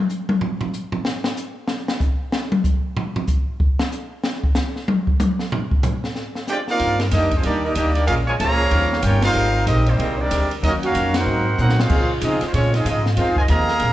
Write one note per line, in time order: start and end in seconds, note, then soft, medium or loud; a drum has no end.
0.09 hi-hat pedal medium
0.29 high tom loud
0.41 floor tom loud
0.61 floor tom loud
0.73 hi-hat pedal medium
0.92 floor tom loud
1.05 snare loud
1.24 snare loud
1.37 hi-hat pedal medium
1.68 snare loud
1.88 snare loud
2.00 kick medium
2.00 hi-hat pedal medium
2.32 snare loud
2.52 high tom loud
2.64 kick medium
2.64 hi-hat pedal medium
2.97 floor tom loud
3.16 floor tom loud
3.27 kick medium
3.27 hi-hat pedal medium
3.60 kick medium
3.79 snare loud
3.92 hi-hat pedal medium
4.24 snare loud
4.44 kick medium
4.55 snare loud
4.55 hi-hat pedal medium
4.76 snare soft
4.88 high tom loud
5.07 kick medium
5.20 hi-hat pedal medium
5.20 high tom loud
5.39 snare medium
5.52 floor tom loud
5.71 kick medium
5.83 floor tom loud
5.83 hi-hat pedal medium
6.04 snare medium
6.15 snare soft
6.35 snare medium
6.47 6.58 G#3 medium
6.47 6.57 D4 medium
6.47 6.58 F4 medium
6.47 6.58 G4 medium
6.47 6.59 C5 medium
6.47 6.59 D5 medium
6.47 6.59 G5 loud
6.47 snare soft
6.47 hi-hat pedal medium
6.67 6.98 A#3 loud
6.67 6.98 C4 loud
6.67 6.98 D#4 loud
6.67 6.98 F4 medium
6.67 6.99 A#4 loud
6.67 6.98 D5 loud
6.67 6.99 F5 loud
6.67 snare soft
6.79 7.11 G2 medium
6.79 7.01 D#3 soft
6.79 7.01 G3 medium
6.79 7.02 A#3 medium
6.79 kick soft
6.79 ride medium
6.84 7.03 D4 medium
6.99 7.07 G3 medium
6.99 7.07 D4 medium
6.99 7.07 D#4 medium
6.99 7.07 A#4 loud
6.99 snare medium
6.99 ride medium
7.11 7.42 F2 medium
7.11 7.33 D#3 medium
7.11 7.33 G3 medium
7.11 7.32 G3 medium
7.11 7.33 A#3 medium
7.11 7.32 A#3 medium
7.11 7.32 D4 medium
7.11 7.34 D4 medium
7.11 7.32 D#4 medium
7.11 7.32 G4 medium
7.11 7.33 D#5 loud
7.11 kick soft
7.11 snare soft
7.11 hi-hat pedal medium
7.11 ride medium
7.31 kick medium
7.31 ride medium
7.36 7.45 G#3 medium
7.36 7.45 C4 medium
7.36 7.45 D4 medium
7.36 7.45 F4 medium
7.36 7.46 C5 medium
7.43 7.75 D#2 medium
7.43 7.64 D#3 medium
7.43 7.65 G3 soft
7.43 7.63 G3 medium
7.43 7.63 A#3 medium
7.43 7.65 A#3 medium
7.43 7.63 A#3 medium
7.43 7.66 D4 medium
7.43 7.63 D4 medium
7.43 7.64 D#4 medium
7.43 7.63 G4 medium
7.43 7.63 D5 loud
7.43 kick soft
7.43 ride medium
7.64 7.72 G3 medium
7.64 7.76 G3 medium
7.64 7.75 A#3 medium
7.64 7.77 A#3 medium
7.64 7.72 D4 medium
7.64 7.74 D4 medium
7.64 7.72 D#4 medium
7.64 7.77 D#4 medium
7.64 7.75 G4 medium
7.64 7.72 A#4 loud
7.64 7.75 D#5 medium
7.75 8.06 D2 loud
7.75 7.96 D#3 medium
7.75 7.97 G3 medium
7.75 7.94 G3 medium
7.75 7.92 A#3 medium
7.75 7.97 A#3 medium
7.75 7.94 A#3 medium
7.75 7.93 D4 medium
7.75 7.97 D4 medium
7.75 7.95 D#4 medium
7.75 7.92 G4 medium
7.75 7.94 D#5 loud
7.75 kick soft
7.75 hi-hat pedal medium
7.75 ride medium
7.93 8.07 G3 medium
7.93 8.06 A#3 medium
7.93 8.07 A#3 medium
7.93 8.07 D4 medium
7.93 8.06 D#4 medium
7.93 8.06 G4 medium
7.93 8.06 D5 medium
7.93 ride medium
8.06 8.38 A#1 medium
8.06 8.28 A#2 medium
8.06 8.20 G#3 loud
8.06 8.17 G#3 medium
8.06 8.29 G#3 medium
8.06 8.20 C#4 medium
8.06 8.16 C#4 medium
8.06 8.17 C#4 medium
8.06 8.29 C#4 medium
8.06 8.20 F4 medium
8.06 8.17 F4 medium
8.06 8.16 G#4 medium
8.06 8.20 A#4 loud
8.06 8.16 A#4 medium
8.06 8.17 F5 loud
8.06 kick soft
8.06 ride medium
8.10 8.30 F4 medium
8.27 8.33 C#3 medium
8.27 8.33 F3 medium
8.27 8.34 G#3 medium
8.27 8.33 F4 medium
8.27 8.33 A#4 medium
8.27 8.33 C#5 medium
8.27 8.32 G#5 loud
8.39 8.70 C#2 medium
8.39 8.60 A#2 medium
8.39 8.99 C#3 medium
8.39 8.99 F3 loud
8.39 8.61 G#3 medium
8.39 8.99 A#3 loud
8.39 8.61 C#4 medium
8.39 8.61 F4 medium
8.39 8.70 G#4 loud
8.39 9.00 C#5 loud
8.39 9.00 F5 loud
8.39 9.00 A#5 loud
8.39 kick soft
8.39 hi-hat pedal medium
8.39 ride medium
8.70 9.02 D#2 medium
8.70 8.92 D#3 medium
8.70 8.84 F3 loud
8.70 8.93 G3 medium
8.70 8.84 C#4 medium
8.70 8.93 C#4 medium
8.70 8.84 D#4 medium
8.70 8.84 G4 loud
8.70 kick soft
8.70 ride medium
8.75 8.94 F4 medium
8.82 snare soft
8.93 snare medium
9.02 9.34 G1 loud
9.02 9.24 D#3 medium
9.02 9.24 G3 medium
9.02 9.23 A#3 medium
9.02 9.22 C#4 medium
9.02 9.24 C#4 medium
9.02 9.24 F4 medium
9.02 9.25 F4 medium
9.02 9.22 G4 medium
9.02 9.23 A#4 medium
9.02 9.23 C#5 medium
9.02 9.24 G5 loud
9.02 kick soft
9.02 hi-hat pedal medium
9.02 ride medium
9.22 9.64 G3 medium
9.22 9.64 C4 medium
9.22 9.64 D#4 loud
9.22 9.64 F4 medium
9.22 9.64 A#4 loud
9.22 9.64 C5 loud
9.22 9.64 F5 loud
9.22 snare loud
9.22 ride medium
9.34 9.66 G#1 medium
9.34 9.48 C3 loud
9.34 9.55 G#3 medium
9.34 9.48 G#3 loud
9.34 9.48 A#3 medium
9.34 9.56 C4 medium
9.34 9.47 G4 loud
9.34 9.56 G4 medium
9.34 9.57 A#4 medium
9.67 9.97 A#1 loud
9.67 9.87 G3 medium
9.67 9.88 G#3 medium
9.67 9.86 C4 medium
9.67 9.88 C4 medium
9.67 9.87 C4 medium
9.67 9.87 D#4 medium
9.67 9.88 G4 medium
9.67 9.87 G4 medium
9.67 9.87 A#4 medium
9.67 9.89 A#4 medium
9.67 9.87 D#5 loud
9.67 kick soft
9.67 hi-hat pedal medium
9.67 ride medium
9.86 10.18 D#3 medium
9.86 10.18 G3 medium
9.86 10.19 A#3 medium
9.86 10.18 C4 medium
9.86 10.19 D#4 medium
9.86 10.19 G4 medium
9.86 10.19 C5 medium
9.86 ride medium
9.98 10.30 C2 medium
9.98 10.12 C3 medium
9.98 10.20 G#3 soft
9.98 10.12 G#3 medium
9.98 10.12 A#3 medium
9.98 10.20 C4 soft
9.98 10.13 G4 loud
9.98 10.20 G4 medium
9.98 10.21 A#4 medium
9.98 kick soft
9.98 ride medium
10.19 10.50 D#3 medium
10.19 10.50 G3 medium
10.19 10.52 C4 medium
10.19 10.50 D4 medium
10.19 10.52 G4 medium
10.19 10.52 A#4 medium
10.19 10.51 D5 loud
10.30 10.62 D2 loud
10.30 10.51 G#3 medium
10.30 10.51 C4 medium
10.30 10.51 G4 medium
10.30 10.52 A#4 medium
10.30 kick soft
10.30 hi-hat pedal medium
10.30 ride medium
10.51 ride medium
10.62 10.93 D#2 medium
10.62 10.83 D#3 medium
10.62 11.27 D#3 medium
10.62 10.71 F#3 medium
10.62 10.84 F#3 medium
10.62 10.71 A#3 medium
10.62 11.26 C#4 medium
10.62 10.84 C#4 medium
10.62 10.73 C#4 medium
10.62 10.71 D#4 medium
10.62 11.26 D#4 loud
10.62 10.84 F4 medium
10.62 11.27 F#4 medium
10.62 10.74 F#4 medium
10.62 10.73 A#4 medium
10.62 10.73 D#5 loud
10.62 kick soft
10.62 ride medium
10.83 11.12 A#3 medium
10.83 11.12 C#4 medium
10.83 11.13 C#4 medium
10.83 11.12 F#4 medium
10.83 11.13 F#4 medium
10.83 11.13 A#4 medium
10.83 11.13 F5 loud
10.83 ride medium
10.93 11.25 F2 medium
10.93 11.14 D#3 medium
10.93 11.15 F#3 medium
10.93 11.15 C#4 medium
10.93 11.16 F4 medium
10.93 kick soft
10.93 hi-hat pedal medium
10.93 ride medium
11.14 11.58 C4 loud
11.14 11.58 D#4 medium
11.14 11.59 D#4 medium
11.14 11.58 F#4 medium
11.14 11.59 A#4 medium
11.14 11.59 C5 medium
11.14 11.59 F#5 medium
11.14 snare loud
11.14 ride medium
11.24 11.46 G#2 medium
11.24 11.57 G#2 medium
11.24 11.47 F#3 medium
11.24 11.47 A#3 medium
11.24 11.47 C4 medium
11.57 11.79 G#2 medium
11.57 11.89 A#2 loud
11.57 11.79 F#3 medium
11.57 11.79 A#3 medium
11.57 11.77 C4 medium
11.57 11.80 C4 medium
11.57 11.77 D#4 medium
11.57 11.78 D#4 medium
11.57 11.77 F#4 medium
11.57 11.78 A#4 medium
11.57 11.78 C5 medium
11.57 11.78 F#5 loud
11.57 hi-hat pedal medium
11.69 snare medium
11.79 12.10 G#3 medium
11.79 12.10 A#3 medium
11.79 12.11 C#4 medium
11.79 12.10 F4 medium
11.79 12.11 G#4 loud
11.79 12.11 C5 medium
11.79 12.11 F5 loud
11.79 snare loud
11.89 12.10 C#3 medium
11.89 12.78 C#3 loud
11.89 12.21 C#3 medium
11.89 12.11 F3 medium
11.89 12.78 G#3 loud
11.89 12.12 G#3 medium
11.89 12.78 C4 loud
11.89 12.12 C4 medium
11.89 12.79 F4 loud
11.89 kick medium
11.89 crash medium
12.21 12.40 C3 medium
12.21 12.42 C#3 medium
12.21 12.42 F3 medium
12.21 12.43 G#3 medium
12.21 12.43 C4 medium
12.21 12.42 D#4 medium
12.21 kick soft
12.21 hi-hat pedal medium
12.21 ride medium
12.25 12.44 C4 medium
12.25 12.44 F4 medium
12.25 12.44 G#4 medium
12.25 12.43 D#5 medium
12.41 12.53 F3 medium
12.41 12.53 G#3 medium
12.41 12.53 C4 medium
12.41 muted upright bass stroke soft
12.41 snare soft
12.41 ride medium
12.46 12.53 G#3 medium
12.46 12.55 C#4 medium
12.46 12.52 F4 medium
12.46 12.55 C5 medium
12.52 12.84 A#2 medium
12.52 12.74 C#3 soft
12.52 12.74 F3 soft
12.52 12.72 F3 medium
12.52 12.72 G#3 medium
12.52 12.75 G#3 medium
12.52 12.72 C4 medium
12.52 12.75 C4 medium
12.52 12.72 C#4 medium
12.52 12.72 F4 medium
12.52 12.72 C#5 loud
12.52 kick soft
12.52 ride medium
12.74 12.87 C4 medium
12.74 12.86 D#4 medium
12.74 12.87 F4 medium
12.74 12.87 G#4 medium
12.74 12.87 D#5 medium
12.74 snare soft
12.74 ride medium
12.85 13.16 G#2 loud
12.85 13.06 C#3 medium
12.85 13.07 F3 medium
12.85 13.06 G#3 medium
12.85 13.07 C4 medium
12.85 13.05 D#4 medium
12.85 kick soft
12.85 hi-hat pedal medium
12.85 ride medium
12.89 13.06 C4 medium
12.89 13.05 F4 medium
12.89 13.06 G#4 medium
12.89 13.06 D#5 medium
13.06 snare medium
13.15 13.48 F2 medium
13.15 13.38 F2 medium
13.15 13.80 D#3 loud
13.15 13.38 D#3 medium
13.15 13.81 G#3 loud
13.15 13.35 G#3 medium
13.15 13.39 G#3 medium
13.15 13.80 C4 medium
13.15 13.35 C4 medium
13.15 13.80 F4 loud
13.15 13.35 F4 medium
13.15 13.36 C5 medium
13.15 kick soft
13.15 ride medium
13.20 13.39 C4 medium
13.20 13.37 D#4 medium
13.20 13.37 G#4 medium
13.20 13.37 F5 loud
13.36 13.43 C3 medium
13.36 13.43 D#3 medium
13.36 13.43 G#3 medium
13.36 13.43 F4 medium
13.36 13.43 C5 medium
13.36 13.43 D#5 medium
13.36 13.43 G#5 medium
13.36 kick medium
13.48 13.80 D#2 loud
13.48 13.70 F2 medium
13.48 13.93 C3 loud
13.48 13.70 D#3 medium
13.48 13.79 D#3 medium
13.48 13.71 G#3 medium
13.48 13.93 A#3 medium
13.48 13.71 C4 medium
13.48 13.93 G#4 medium
13.48 13.79 D#5 loud
13.48 13.93 F5 medium
13.48 13.93 A#5 loud
13.48 kick soft
13.48 hi-hat pedal medium
13.48 ride medium
13.68 snare soft
13.80 13.93 A#1 medium
13.80 13.93 A#2 soft
13.80 13.93 G#3 soft
13.80 13.93 C4 medium
13.80 13.93 D4 medium
13.80 kick soft
13.80 ride medium